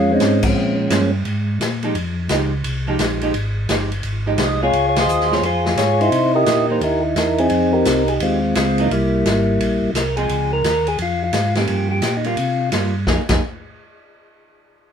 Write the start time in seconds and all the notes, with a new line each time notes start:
Already playing: F2 G#3 C#4 F4
0.12 G#3 C4 D#4
0.20 G#2, snare, hi-hat pedal, ride
0.43 F3 G#3, kick, crash
0.48 C#4
0.55 A#2
0.89 G2 A#3 C#4 G#4 C5, snare, hi-hat pedal, ride
1.25 G#2, ride
1.60 A#2, snare, hi-hat pedal, ride
1.83 F3 G#3 D#4 G4, ride
1.94 F2, ride
2.29 C#2 F3 G#3 D#4 G4, snare, hi-hat pedal, ride
2.64 C2, ride
2.87 F3 G#3 D#4 G4
2.99 A#1, snare, hi-hat pedal, ride
3.21 F3 G#3 D#4 G4, ride
3.33 G#1, ride
3.69 G1 F3 G#3 D#4 G4, snare, hi-hat pedal, ride
3.92 ride
4.03 G#1, ride
4.26 F3 G#3 D#4 G4
4.38 C2, snare, hi-hat pedal, ride
4.43 D#5
4.62 G#3 C4 F4 G#4 C#5
4.73 C#2, ride
4.89 C#5
4.96 G#4 C5, snare, ride
5.00 D#5
5.07 D#2, hi-hat pedal
5.21 snare
5.31 G#3 C4 F4 C#5, snare
5.42 F2 F4 G#4 C5, ride
5.66 snare
5.76 G#2 C#5, snare, hi-hat pedal, ride
6.01 D#4 E4 C5, ride
6.11 C3, ride
6.35 G4 A#4 D#5
6.46 A#2, snare, hi-hat pedal, ride
6.69 E3 A#3 D#4 C5
6.81 D#2 D#4 E4 A#4, ride
7.15 E2 A#4, snare, hi-hat pedal, ride
7.38 C4 D#4 G#4, ride
7.50 F2, ride
7.73 D#4 G4 A#4
7.85 C2, snare, hi-hat pedal, ride
8.08 G#4, ride
8.20 D#2 G#3 C4 F4, ride
8.55 C#2 G#3 C4 F4, snare, hi-hat pedal, ride
8.78 E3 A#3 D#4, ride
8.91 C2 G3 A#3 E4, ride
9.25 G#1, snare, hi-hat pedal, ride
9.59 A#1, ride
9.82 A#1
9.94 C2 A#4, snare, hi-hat pedal, ride
10.17 F3 G#3 C4 G#4, ride
10.29 C#2, ride
10.53 A#4
10.63 D#2, snare, hi-hat pedal, ride
10.87 G#4, ride
10.98 F2 F4, ride
11.24 F4
11.33 G#2, snare, hi-hat pedal, ride
11.55 F3 A#3 C#4 G4, snare, ride
11.67 G2, ride
11.91 G4
12.02 A#2, snare, hi-hat pedal, ride
12.17 D#4
12.24 G3 A#3 F4, ride
12.37 C3, ride
12.72 G2 G3 A#3 F4, snare, hi-hat pedal, ride
13.07 F2 F3 A#3 D#4 G#4, kick, snare
13.29 F2 F3 A#3 D#4 G#4, kick, snare, crash